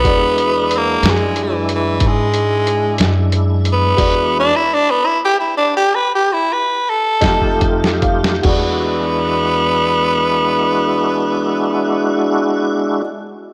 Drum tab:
CC |------------------------|x-----------------------|x-----------------------|
HH |x-x-x-x-x-x-x-x-x-x-x-x-|x-----------------x-x-x-|------------------------|
SD |------o-----------o-----|------------------o--o-o|------------------------|
BD |o-----------o-----------|o-----------------ooo-o-|o-----------------------|